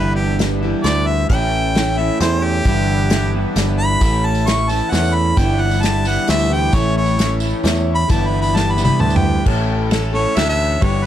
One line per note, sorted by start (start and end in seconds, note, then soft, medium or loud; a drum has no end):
0.00 0.73 G1 loud
0.00 0.39 G2 medium
0.00 0.40 D3 medium
0.00 0.38 E3 medium
0.00 0.39 G3 medium
0.00 0.40 B3 medium
0.00 1.29 B3 medium
0.00 1.30 D4 medium
0.00 0.42 E4 medium
0.00 1.29 E4 medium
0.00 1.29 G4 medium
0.00 0.15 B4 medium
0.16 0.38 G4 medium
0.39 0.62 E3 medium
0.39 0.63 G3 medium
0.39 0.63 B3 medium
0.39 0.61 E4 medium
0.39 snare medium
0.39 closed hi-hat medium
0.63 1.29 G2 medium
0.63 1.28 D3 medium
0.63 0.84 E3 soft
0.63 0.85 G3 soft
0.63 0.85 B3 medium
0.63 0.85 E4 medium
0.84 1.24 D2 loud
0.84 1.31 E3 medium
0.84 1.31 G3 medium
0.84 1.31 B3 medium
0.84 1.32 E4 medium
0.84 1.08 D5 loud
0.84 snare medium
0.84 closed hi-hat medium
1.07 1.29 E5 medium
1.29 2.09 A1 loud
1.29 1.76 A2 medium
1.29 1.75 E3 medium
1.29 2.65 A3 medium
1.29 1.75 A3 medium
1.29 2.65 C#4 medium
1.29 1.76 C#4 medium
1.29 2.65 E4 medium
1.29 1.78 E4 medium
1.29 2.66 A4 medium
1.29 2.00 G5 medium
1.29 kick loud
1.29 closed hi-hat medium
1.75 2.20 E3 medium
1.75 2.20 A3 medium
1.75 2.21 C#4 medium
1.75 2.22 E4 medium
1.75 snare medium
1.75 closed hi-hat medium
1.97 2.65 A2 medium
1.97 2.66 E3 medium
1.97 2.65 A3 medium
1.97 2.65 C#4 medium
1.97 2.68 E4 medium
1.97 2.20 E5 medium
2.20 2.60 E2 loud
2.20 2.66 E3 medium
2.20 2.66 A3 medium
2.20 2.67 C#4 medium
2.20 2.67 E4 medium
2.20 2.46 C5 medium
2.20 snare medium
2.20 closed hi-hat medium
2.45 3.32 G4 loud
2.65 3.45 G1 medium
2.65 3.11 G2 medium
2.65 3.11 D3 medium
2.65 3.09 E3 medium
2.65 3.10 G3 medium
2.65 4.01 B3 medium
2.65 3.11 B3 medium
2.65 4.01 D4 medium
2.65 4.01 E4 medium
2.65 3.12 E4 medium
2.65 4.01 G4 medium
2.65 kick loud
2.65 closed hi-hat medium
3.10 3.55 E3 medium
3.10 3.56 G3 medium
3.10 3.57 B3 medium
3.10 3.59 E4 medium
3.10 snare medium
3.10 closed hi-hat medium
3.34 4.02 G2 medium
3.34 4.00 D3 medium
3.34 4.01 E3 medium
3.34 4.01 G3 medium
3.34 4.01 B3 medium
3.34 4.03 E4 medium
3.55 3.96 G1 loud
3.55 4.01 E3 medium
3.55 4.01 G3 medium
3.55 4.02 B3 medium
3.55 4.02 E4 medium
3.55 snare medium
3.55 closed hi-hat medium
3.79 4.28 B5 loud
4.00 4.80 A1 loud
4.00 4.46 A2 medium
4.00 4.44 E3 medium
4.00 4.44 A3 medium
4.00 5.37 A3 medium
4.00 4.45 C#4 medium
4.00 5.37 C#4 medium
4.00 4.47 E4 medium
4.00 5.38 A4 medium
4.00 kick loud
4.00 closed hi-hat medium
4.00 tambourine medium
4.04 5.38 E4 medium
4.26 4.50 A5 medium
4.35 tambourine medium
4.44 4.91 E3 medium
4.44 4.90 A3 medium
4.44 4.91 C#4 medium
4.44 4.92 E4 medium
4.44 4.71 C#6 medium
4.44 snare medium
4.44 closed hi-hat medium
4.69 5.36 A2 medium
4.69 5.37 E3 medium
4.69 5.37 A3 medium
4.69 5.37 C#4 medium
4.69 5.39 E4 medium
4.69 4.93 A5 medium
4.69 tambourine medium
4.91 5.32 E2 loud
4.91 5.38 E3 medium
4.91 5.37 A3 medium
4.91 5.38 C#4 medium
4.91 5.39 E4 medium
4.91 5.17 F#5 medium
4.91 snare medium
4.91 closed hi-hat medium
4.91 tambourine soft
5.05 tambourine medium
5.15 5.40 B5 medium
5.37 6.17 G1 medium
5.37 5.83 G2 medium
5.37 5.83 D3 medium
5.37 5.82 E3 medium
5.37 5.82 G3 medium
5.37 5.83 B3 medium
5.37 6.74 B3 medium
5.37 6.73 D4 medium
5.37 5.84 E4 loud
5.37 6.71 E4 medium
5.37 6.74 G4 medium
5.37 5.63 G5 medium
5.37 kick loud
5.37 closed hi-hat medium
5.37 tambourine medium
5.61 5.84 F#5 medium
5.71 tambourine medium
5.82 6.27 E3 medium
5.82 6.27 G3 medium
5.82 6.28 B3 medium
5.82 6.30 E4 medium
5.82 6.09 A5 medium
5.82 snare medium
5.82 closed hi-hat medium
6.04 6.73 G2 medium
6.04 6.72 D3 medium
6.04 6.73 E3 medium
6.04 6.73 G3 medium
6.04 6.72 B3 medium
6.04 6.76 E4 medium
6.04 6.29 F#5 medium
6.04 tambourine medium
6.28 6.68 D2 loud
6.28 6.51 E3 medium
6.28 6.50 G3 medium
6.28 6.49 B3 medium
6.28 6.48 E4 medium
6.28 6.54 E5 loud
6.28 snare medium
6.28 closed hi-hat medium
6.28 tambourine soft
6.39 tambourine medium
6.49 6.71 E3 soft
6.49 6.73 G3 soft
6.49 6.73 B3 soft
6.49 6.72 E4 soft
6.49 6.76 G5 loud
6.72 7.52 A1 loud
6.72 7.18 A2 medium
6.72 7.17 E3 medium
6.72 7.17 A3 medium
6.72 8.08 A3 medium
6.72 8.08 C#4 medium
6.72 7.18 C#4 loud
6.72 8.08 E4 medium
6.72 7.20 E4 loud
6.72 8.08 A4 medium
6.72 6.96 C#5 loud
6.72 kick loud
6.72 closed hi-hat medium
6.72 tambourine loud
6.97 7.32 C#5 medium
7.06 tambourine medium
7.17 7.63 E3 medium
7.17 7.62 A3 medium
7.17 7.63 C#4 medium
7.17 7.65 E4 medium
7.17 snare medium
7.17 closed hi-hat medium
7.40 8.09 A2 medium
7.40 8.10 E3 medium
7.40 8.09 A3 medium
7.40 8.08 C#4 medium
7.40 8.12 E4 medium
7.40 tambourine loud
7.63 8.04 E2 loud
7.63 8.08 E3 medium
7.63 8.09 A3 medium
7.63 8.09 C#4 medium
7.63 8.10 E4 medium
7.63 snare medium
7.63 closed hi-hat medium
7.63 tambourine soft
7.75 tambourine medium
7.95 8.10 B5 loud
8.09 8.89 G1 loud
8.09 8.54 G2 medium
8.09 8.54 D3 medium
8.09 8.52 E3 medium
8.09 8.53 G3 medium
8.09 8.54 B3 medium
8.09 9.45 B3 medium
8.09 9.45 D4 medium
8.09 8.55 E4 loud
8.09 9.44 E4 medium
8.09 9.45 G4 medium
8.09 8.29 A5 medium
8.09 kick loud
8.09 closed hi-hat medium
8.09 tambourine medium
8.27 8.41 B5 medium
8.42 8.58 B5 loud
8.42 tambourine medium
8.54 8.77 E3 medium
8.54 8.77 G3 medium
8.54 8.77 B3 medium
8.54 8.76 E4 medium
8.54 8.73 A5 medium
8.54 snare medium
8.72 8.84 B5 medium
8.77 9.44 D3 medium
8.77 8.98 E3 soft
8.77 8.99 G3 soft
8.77 9.00 B3 medium
8.77 9.00 E4 soft
8.77 tambourine loud
8.81 9.46 G2 medium
8.81 9.02 B5 loud
8.81 high tom medium
8.89 tambourine soft
8.99 9.40 D2 loud
8.99 9.44 E3 medium
8.99 9.45 G3 medium
8.99 9.46 B3 medium
8.99 9.46 E4 medium
8.99 9.17 A5 loud
8.99 mid tom medium
8.99 tambourine soft
9.10 tambourine medium
9.16 9.45 G5 loud
9.16 mid tom loud
9.44 10.25 A1 medium
9.44 9.90 A2 medium
9.44 9.90 E3 medium
9.44 10.80 A3 medium
9.44 9.90 A3 medium
9.44 10.80 C#4 medium
9.44 9.90 C#4 medium
9.44 10.80 E4 medium
9.44 10.80 A4 medium
9.44 9.91 A4 medium
9.44 kick loud
9.44 crash medium
9.90 10.13 E3 medium
9.90 10.14 A3 medium
9.90 10.12 C#4 medium
9.90 10.12 A4 medium
9.90 snare medium
9.90 ride medium
10.13 10.80 A2 medium
10.13 10.81 E3 medium
10.13 10.34 A3 soft
10.13 10.35 C#4 soft
10.13 10.36 A4 medium
10.13 10.38 C#5 medium
10.34 10.76 D2 loud
10.34 10.81 E3 medium
10.34 10.81 A3 medium
10.34 10.82 C#4 medium
10.34 10.81 A4 medium
10.34 10.48 E5 loud
10.34 snare medium
10.34 ride medium
10.49 10.84 E5 loud
10.80 11.06 G1 loud
10.80 11.06 G2 medium
10.80 11.06 D3 medium
10.80 11.06 E3 medium
10.80 11.06 G3 medium
10.80 11.06 B3 medium
10.80 11.06 D4 medium
10.80 11.06 E4 medium
10.80 11.06 G4 medium
10.80 11.06 C#5 medium
10.80 kick loud
10.80 ride medium